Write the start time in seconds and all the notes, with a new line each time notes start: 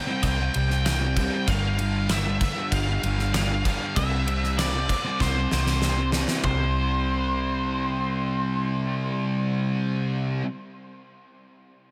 Already playing: G5
0.07 G3 C4
0.23 C2 G5, kick, ride
0.38 G3 C4
0.53 C2 C3 G3 C4, ride
0.69 G3 C4, snare
0.85 C3 G3 C4 G5, snare, ride
1.00 G3 C4
1.16 C3 G3 C4, kick, ride
1.47 G1 G2 D3 G3 F5, kick, ride
1.78 G2 D3 G3, ride
2.08 G2 D3 G3 E5, snare, ride
2.25 D3 G3
2.40 muted distorted electric guitar stroke, kick, ride
2.55 D3 G3
2.72 G1 F5, kick, ride
2.86 D3 G3
3.02 G1 G2 D3 G3, ride
3.18 D3 G3, snare
3.32 G2 D3 G3 F5, snare, ride
3.48 D3 G3
3.64 G2 D3 G3, kick, ride
3.95 C2 C3 G3 C4 E5, kick, ride
4.26 C3 G3 C4, ride
4.44 snare
4.57 C3 G3 C4 D5, snare, ride
4.73 G3 C4
4.89 muted distorted electric guitar stroke, kick, ride
5.04 G3 C4
5.20 C2 C5, kick, snare
5.35 G3 C4
5.50 C2 C3 G3 C4, snare
5.65 G3 C4, snare
5.80 C3 G3 C4, snare
5.97 G3 C4
6.12 C3 G3 C4, snare
6.28 snare
6.43 C2 C3 G3 C5, kick, floor tom
6.47 C4